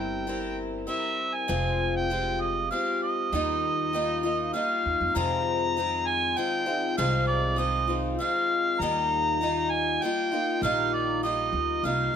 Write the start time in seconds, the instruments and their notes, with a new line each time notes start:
Already playing: upright bass G1, twelve-string acoustic guitar G3 C4 E4 A#4, harmonica G5
0.27 twelve-string acoustic guitar G3 C4 E4 A#4
0.87 twelve-string acoustic guitar G3 C4 E4 A#4, harmonica E5
1.35 harmonica G#5
1.48 upright bass F1, twelve-string acoustic guitar F2 C3 G#3 C4 F4
1.96 harmonica G5
2.10 twelve-string acoustic guitar G#3 C4 F4 G4
2.41 harmonica D#5
2.71 twelve-string acoustic guitar G#3 C4 F4 G4, harmonica F5
3.02 harmonica D#5
3.32 upright bass D#2, twelve-string acoustic guitar D#3 G3 A#3 D#4 F4
3.93 twelve-string acoustic guitar G3 A#3 D#4 F4
4.23 twelve-string acoustic guitar A#3 D#4 F4
4.53 twelve-string acoustic guitar G3 A#3 D#4 F4, harmonica F5
4.86 upright bass D#2
5.01 upright bass F2
5.15 twelve-string acoustic guitar F2 C3 D#3 G#3 C4 F4, upright bass F2, harmonica A#5
5.76 twelve-string acoustic guitar D#3 G#3 C4 F4
6.07 harmonica G#5
6.37 twelve-string acoustic guitar D#3 G#3 C4 F4, harmonica G5
6.66 twelve-string acoustic guitar D#3 G#3 C4 F4
6.97 upright bass C2, twelve-string acoustic guitar F2 C3 D#3 G#3 C4 F4, harmonica F5
7.27 harmonica D5
7.56 twelve-string acoustic guitar D#3 G#3 C4 F4, harmonica D#5
7.87 twelve-string acoustic guitar D#3 G#3 C4 F4
8.19 twelve-string acoustic guitar D#3 G#3 C4 F4, harmonica F5
8.80 upright bass D#2, twelve-string acoustic guitar D#3 G3 A#3 D#4 F4, harmonica A#5
9.41 twelve-string acoustic guitar G3 A#3 D#4 F4
9.71 harmonica G#5
10.02 twelve-string acoustic guitar G3 A#3 D#4 F4, harmonica G5
10.32 twelve-string acoustic guitar A#3 D#4 F4
10.62 upright bass A#1, twelve-string acoustic guitar D#3 G3 A#3 D#4 F4, harmonica F5
10.93 harmonica D5
11.23 twelve-string acoustic guitar G3 A#3 D#4 F4, harmonica D#5
11.53 upright bass D2
11.83 upright bass C2, twelve-string acoustic guitar G3 A#3 D#4 F4, harmonica F5